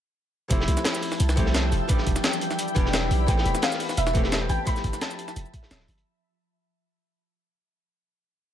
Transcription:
0.49 F1 F3 A3 C4 E4 G4 E5 G5 A5, kick, closed hi-hat, cabasa
0.60 snare
0.68 C2, closed hi-hat
0.77 snare, cabasa
0.85 snare, closed hi-hat, cabasa
0.94 snare, cabasa
1.02 closed hi-hat, open hi-hat
1.12 snare, cabasa
1.20 C2, closed hi-hat, cabasa
1.29 snare, cabasa
1.36 F3 A3 C4 E4 G4, kick, closed hi-hat
1.46 snare
1.54 snare, closed hi-hat, cabasa
1.72 F1, closed hi-hat, open hi-hat, cabasa
1.88 E3 G3 B3 D4 E4 G4 D5 G5 B5, kick, closed hi-hat, cabasa
1.98 snare
2.07 E1, kick, closed hi-hat
2.16 snare, cabasa
2.24 snare, closed hi-hat, cabasa
2.33 closed hi-hat, cabasa
2.41 closed hi-hat
2.51 snare, cabasa
2.59 closed hi-hat, cabasa
2.68 cabasa
2.75 E1 E3 G3 B3 D4 G4, kick, closed hi-hat
2.86 snare
2.93 snare, closed hi-hat, cabasa
3.11 B1, closed hi-hat, open hi-hat, cabasa
3.27 A1 E3 A3 B3 C4 G4 G5 A5, kick, closed hi-hat, cabasa
3.38 snare
3.45 E1, closed hi-hat
3.55 snare, cabasa
3.62 F5, snare, closed hi-hat, cabasa
3.72 snare, cabasa
3.80 closed hi-hat, open hi-hat
3.89 snare, cabasa
3.97 E1 E5, closed hi-hat, cabasa
4.07 snare, cabasa
4.13 E3 A3 B3 C4 G4, kick, closed hi-hat
4.24 snare
4.32 snare, closed hi-hat, cabasa
4.49 A1 G5, closed hi-hat, open hi-hat, cabasa
4.65 F3 A3 B3 E4 G4 E5 B5, kick, closed hi-hat, cabasa
4.76 snare, cabasa
4.84 G1, kick, closed hi-hat
4.93 snare, cabasa
5.01 A5, snare, closed hi-hat, cabasa
5.11 closed hi-hat, cabasa
5.19 closed hi-hat
5.28 snare, cabasa
5.36 F1, closed hi-hat, cabasa
5.46 cabasa
5.54 kick, closed hi-hat
5.63 snare
5.71 D1, snare, closed hi-hat, cabasa
5.80 snare
5.88 G1, closed hi-hat, open hi-hat, cabasa
5.98 closed hi-hat

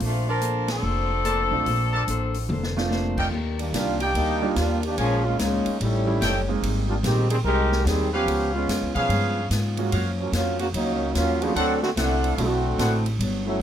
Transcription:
0.00 A#1 A3 A#3 C4 D4 F4 A4 C5, open hi-hat
0.29 F3 C4 D4 A#4
0.41 A#3 D4 A4 C5, closed hi-hat
0.68 F3 C4 D4 A4, snare, ride
0.82 F1 A#3 D4 A4 C5
1.23 A#3 D4 A4 A#4 C5 D5 A5, closed hi-hat
1.51 B1 A3 C4 D4 F4
1.66 A#1 A#3 D4 A4 C5, open hi-hat
1.93 A#4 C5 D5 A5
2.07 A1 A#3 D4 A4 C5, closed hi-hat
2.34 open hi-hat
2.49 F1 A#3 D4 A4 C5, high tom
2.63 snare
2.77 A3 C4 D4 F4, snare
2.90 A#3 D4 A4 C5, snare
3.17 A#4 D5 D#5 G5, kick, crash
3.31 D#2 D#3 A#3 D4 G4
3.59 D#3 G3 A#3 D4, ride
3.72 C2 D#3 G3 A#3 D4 D#4 F4 G4, snare, hi-hat pedal, ride
4.00 D#3 A#3 D4 D#4 G4 A#4 D5 G5, ride
4.14 D2 D#3 G3 A#3 D4 D#4 G4, ride
4.42 G3 A#3 D4 D#4 F4
4.56 D#2 D#3 G3 A#3 D4 F4 G4, snare, hi-hat pedal, ride
4.83 D#3 A#3 D4 G4, ride
4.98 A#1 A#2 F3 G#3 A#3 C#4 F4 G#4 A#4 C#5 F5 G#5, ride
5.25 G#3 A#3 C#4 F4
5.39 C#2 A#2 G#3 A#3 C#4 D#4 F4, snare, hi-hat pedal, ride
5.66 muted upright bass stroke, ride
5.80 A1 A2 G3 A3 C#4 D#4 E4, ride
6.07 G3 A3 C#4 D#4 E4
6.21 F#1 A2 G3 C#4 D#4 A4 C#5 D#5 G5, snare, hi-hat pedal, ride
6.48 G#3 A#3 C4 D#4 G#4
6.62 G#1 G#2 G3 C4 D#4, ride
6.89 G3 A#3 D4 F4
7.03 A#1 G#2 D#3 G3 G#3 C4 D#4 G4, snare, hi-hat pedal, ride
7.30 D#3 G3 C4 G#4, ride
7.44 C2 G#2 G3 G#3 C4 D#4 G4 A#4
7.72 snare
7.85 D#2 G#2 D#3 G3 C4 D#4 G#4, snare, hi-hat pedal, ride
8.13 F3 B3 C#4 G4 B4 C#5 F5
8.26 C#2 C#3 G#3 B3 F4, ride
8.55 G#3 B3 C#4 F4
8.67 F2 C#3 G#3 B3 F4, snare, hi-hat pedal, ride
8.82 C#2
8.95 B1 F3 B3 C#4 G#4 B4 C#5 F5, kick, ride
9.09 G2 C#3 G#3 B3 F4, ride
9.50 G#2 C#3 G#3 B3 F4, snare, hi-hat pedal, ride
9.77 G#3 A#3 C#4 F4 F#4, ride
9.92 F#2 F3 A#3 C#4 F#4 A#4 C#5 F5, ride
10.19 F3 F#3 A#3 C#4
10.32 F2 F#2 F3 F#3 A#3 C#4 F4, snare, hi-hat pedal, ride
10.59 C#3 F3 A#3 F#4, ride
10.73 C#2 F#2 F3 F#3 A#3 C#4 D#4, ride
11.15 D#2 F#2 F3 F#3 A#3 C#4 F4, snare, hi-hat pedal, ride
11.41 F3 A3 A#3 C4 C#4 D4 E4 F#4 G#4, ride
11.55 D2 D3 F#3 A3 C4 D4 F#4 A4 C5 D5 F#5, ride
11.83 D3 A3 C4 F#4, snare
11.96 C2 D3 A3 C4 D4 E4 F#4 A4 C5 D5 F#5, snare, hi-hat pedal, ride
12.24 ride
12.37 B1 D3 A3 C4 D4 E4 F#4, ride
12.78 A1 D3 A3 C4 D4 E4 F#4 A4 C5 D5 F#5, snare, hi-hat pedal, ride
13.06 ride
13.19 G1 G2 F#3 B3 D4, ride
13.46 F#3 A3 C#4 E4

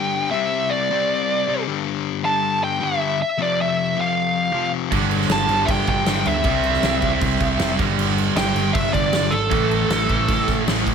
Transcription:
Already playing: G2 D3 G3 G5
0.31 C3 G3 C4 E5
0.70 D5
0.90 C3 G3 C4
1.47 C3 G3 C4
1.66 G2 D3 G3
2.23 G2 D3 G3 A5
2.64 G5
2.80 G2 D3 G3 E5
3.22 E5
3.38 F2 C3 F3
3.42 D5
3.61 E5
3.95 F2 C3 F3
4.01 F5
4.52 F2 C3 F3
4.91 G1 G2 D3 G3, kick, crash
5.11 crash
5.21 snare
5.29 G1 A5, snare, crash
5.48 G1 G2 D3 G3, crash
5.65 G1 E5, kick, crash
5.70 G5
5.87 G1 G5, kick, crash
6.06 G1 G2 D3 G3, snare, crash
6.26 D2 E5, crash
6.44 C2 C3 G3 C4, kick, crash
6.64 crash
6.74 snare
6.83 C2, snare, crash
7.01 C2 C3 G3 C4, kick, crash
7.21 C2, kick, crash
7.40 C2, kick, crash
7.58 F1 C3 G3 C4, snare, crash
7.78 G1 G2 D3 G3, kick, crash
7.98 G1, crash
8.18 crash
8.35 G1 G2 D3 G3 G5, snare, crash
8.55 G1, crash
8.73 G1 E5, kick, crash
8.93 G1 G2 D3 G3 D5, kick, crash
9.13 G1, snare, crash
9.31 G#1 A4, crash
9.51 A1 A2 E3 A3, kick, crash
9.71 crash
9.90 A1, snare, crash
10.09 A1 A2 E3 A3, kick, crash
10.28 A1, kick, crash
10.48 A1, kick, snare, crash
10.66 A1 A2 E3 A3, snare, crash
10.86 A1, kick, crash

